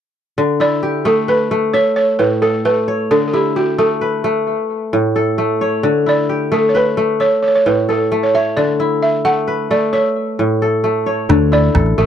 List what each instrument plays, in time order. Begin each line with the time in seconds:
0.38 kora D3
0.60 kora E4, balafon D5
0.83 kora G4
1.05 kora A3, balafon A4
1.28 kora B4, balafon B4
1.51 kora A3
1.74 balafon C#5, kora E5
1.96 balafon C#5
2.19 kora A2, balafon B4
2.42 balafon A4, kora A4
2.65 kora A3, balafon B4
2.88 kora C#5
3.11 kora D3, balafon A4
3.28 balafon A4
3.33 kora E4, balafon G4
3.56 balafon F#4, kora G4
3.79 kora A3, balafon A4
4.01 kora B4
4.24 kora A3
4.93 kora A2
5.16 kora A4
5.38 kora A3
5.61 kora C#5
5.83 kora D3
6.06 kora E4, balafon D5
6.29 kora G4
6.52 kora A3, balafon A4
6.69 balafon C#5
6.75 kora B4, balafon B4
6.97 kora A3
7.20 balafon C#5, kora E5
7.42 balafon C#5
7.48 balafon C#5
7.55 balafon C#5
7.66 kora A2, balafon B4
7.89 kora A4, balafon A4
8.12 kora A3
8.23 balafon C#5
8.34 kora C#5, balafon E5
8.57 kora D3, balafon D5
8.80 kora E4
9.03 balafon E5
9.25 kora A3, balafon F#5
9.48 kora B4
9.71 kora A3, balafon D5
9.93 balafon C#5, kora E5
10.39 kora A2
10.62 kora A4
10.84 kora A3
11.06 kora C#5
11.29 fingered electric bass D2, kora D3, calabash thump, calabash click
11.52 kora E4, balafon D5
11.75 fingered electric bass A1, kora A4, calabash thump, calabash click
11.86 calabash click
11.98 fingered electric bass A1, kora A3, balafon A4